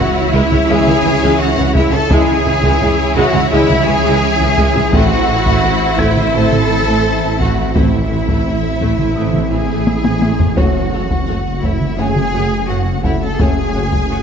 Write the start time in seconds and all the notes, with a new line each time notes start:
Already playing: C#2 E3 C#4 E4 F#4 G#4 C#5 E5 F#5, impact
0.33 C#2 G#3 E4 E5, taiko
0.51 C#2 G#3, taiko mid
0.69 C#2 G#3 E4 G#4 E5 G#5
0.86 C#2 G#3, taiko mid
1.04 C#2 E3
1.22 C#2 G#3
1.40 F#4 F#5
1.57 C#2 E3
1.74 C#2 G#3 E4 E5, taiko
1.92 C#2 G#3 A4 A5
2.10 C#2 E3 G#3 C#4 E4 G#4 C#5 E5 G#5, taiko
2.45 C#2 E3
2.63 C#2 G#3, taiko
2.81 C#2 G#3
3.16 C#2 G#3 F#4 F#5, taiko
3.34 C#2 G#3, taiko mid
3.51 C#2 G#3 E4 E5
3.69 C#2 G#3, taiko mid
3.87 C#2 E3 G#4 G#5
4.05 C#2 G#3
4.40 C#2 E3
4.57 C#2 G#3, taiko
4.75 C#2 G#3
4.92 A1 E3 A3 C4 E4 F#4 A4 C5 E5 F#5, taiko
5.28 A1 E3
5.46 A1 A3, taiko
5.63 A1 A3
5.98 A1 A3 E4 E5 G#6, taiko
6.16 A1 A3, taiko mid
6.34 A1 A3 C4 A4 A5
6.52 A1 A3, taiko mid
6.69 A1 E3
6.87 A1 A3
7.23 A1 E3
7.40 A1 A3 F#4 F#5, taiko
7.58 A1 A3
7.74 A1 E3 A3 C4 E4 C5 E5, taiko
8.11 A1 E3
8.28 A1 A3, taiko
8.46 A1 A3
8.81 A1 A3, taiko
8.99 A1 A3, taiko mid
9.16 A1 A3 C4 E4 D#6
9.34 A1 A3, taiko mid
9.52 A1 E3 G#4 G#5
9.69 A1 A3
9.87 taiko high
10.05 A1 E3, taiko high
10.22 A1 A3, taiko high
10.40 A1 A3, taiko low
10.57 F#1 C#3 A3 C#4 F#4 A4 C#5 F#5, taiko
10.92 F#1 A3 A4 C#5 F#5
11.11 taiko
11.27 F#1 A3 A4 C#5 F#5
11.63 F#1 A3 E4 A4 C#5 E5 F#5, taiko
11.81 taiko mid
11.98 F#1 A3 C#4 F#4 G#4 C#5 F#5 G#5
12.16 taiko mid
12.33 F#1 A3 F#4 C#5 F#5
12.68 F#1 A3 F#4 A4 C#5 F#5
13.03 F#1 A3 E4 A4 C#5 E5 F#5, taiko
13.23 A4 A5
13.39 F#1 C#3 A3 C#4 F#4 G#4 C#5 F#5 G#5, taiko
13.74 F#1 A3 F#4 C#5 F#5
13.93 taiko
14.10 F#1 A3 F#4 C#5 F#5